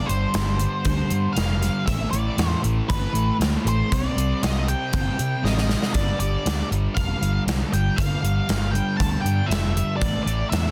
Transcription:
Already playing: G2
0.06 G1 G3 C5, closed hi-hat
0.11 D3
0.34 G1 G2 D3 G3, snare, closed hi-hat
0.59 D3 G3, closed hi-hat
0.85 D2 G2 D3 G3, kick, closed hi-hat
1.10 G2 D3 G3, closed hi-hat
1.33 F1 G2 D3 F5, closed hi-hat
1.38 G3, snare
1.61 D3 G3, snare, closed hi-hat
1.86 A1 A2 E3 A3 E5, kick, closed hi-hat
2.11 A1 E3 A3 D5, closed hi-hat
2.37 E2 A2 E3 A3, snare, closed hi-hat
2.62 A1 E3 A3, closed hi-hat
2.88 G1 A2 E3 A3 B4, kick, closed hi-hat
3.13 A1 E3 A3, closed hi-hat
3.39 D2 A2 E3 A3, snare, closed hi-hat
3.65 A1 E3 A3 C5, closed hi-hat
3.90 C2 C3 G3 C4 D5, kick, closed hi-hat
4.16 C2 G3 C4, closed hi-hat
4.42 C2 C3 G3 C4 D#5, snare, closed hi-hat
4.67 G3 C4 G5, closed hi-hat
4.93 G1 C3 G3 C4, kick, closed hi-hat
5.18 C3 G3 C4, closed hi-hat
5.42 A1 C3 G3 C4 D#5, snare
5.58 snare
5.68 G3 C4, snare
5.83 snare
5.93 G1 G2 D3 G3 D5, kick, closed hi-hat
6.20 G1 D3 G3 D5, closed hi-hat
6.44 D2 G2 D3 G3, snare, closed hi-hat
6.70 G1 D3 G3, closed hi-hat
6.95 F1 G2 D3 G3 F5, kick, closed hi-hat
7.20 G1 D3 G3, closed hi-hat
7.46 C2 G2 D3 G3, snare, closed hi-hat
7.72 G1 D3 G3 G5, closed hi-hat
7.96 G1 G2 D3 F5, kick, closed hi-hat
8.00 G3
8.22 G1 D3 G3, closed hi-hat
8.48 G1 G2 D3 G3, snare, closed hi-hat
8.71 G3 G5, closed hi-hat
8.76 D3
8.97 D2 G2 D3 A5, kick, closed hi-hat
9.01 G3
9.21 G2 G3 G5
9.26 D3, closed hi-hat
9.46 F1 G2 E5
9.51 D3 G3, snare, closed hi-hat
9.75 D3 G3, closed hi-hat
9.97 A2 D5
10.01 A1 E3 A3, kick, closed hi-hat
10.23 A1 A3 D5
10.27 E3, closed hi-hat
10.50 E2 A2 E3 A3 E5, snare, closed hi-hat

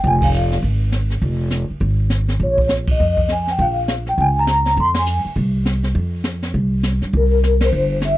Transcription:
0.04 F1 G#5, brush sweep, kick
0.22 F5, kick, ride
0.34 hi-hat pedal
0.52 snare
0.62 G#1, brush sweep, kick
0.92 snare, hi-hat pedal
1.10 snare
1.22 F1, brush sweep, kick
1.51 snare, hi-hat pedal
1.70 muted upright bass stroke
1.80 G#1, brush sweep, kick
2.10 snare, hi-hat pedal
2.28 snare
2.39 A#1 C#5, brush sweep, kick
2.58 kick
2.69 snare, hi-hat pedal
2.88 D#5, kick, ride
2.99 F2, brush sweep
3.17 kick
3.28 G#5, snare, hi-hat pedal
3.47 snare
3.51 G5
3.58 A#1 F5, brush sweep, kick
3.88 snare, hi-hat pedal
4.06 G5, snare
4.18 C#2 G#5, brush sweep, kick
4.39 A#5
4.47 snare, hi-hat pedal
4.65 snare
4.77 F2 C6, brush sweep, kick
4.94 snare, ride
4.99 G#5
5.06 hi-hat pedal
5.25 muted upright bass stroke
5.35 C2, brush sweep, kick
5.66 snare, hi-hat pedal
5.83 snare
5.95 F2, brush sweep, kick
6.24 snare, hi-hat pedal
6.43 snare
6.54 C2, brush sweep, kick
6.83 snare, hi-hat pedal
7.02 G2, snare
7.13 C2 A#4, brush sweep, kick
7.43 snare, hi-hat pedal
7.61 C5, snare, ride
7.72 G1, brush sweep
8.01 E5, snare, hi-hat pedal

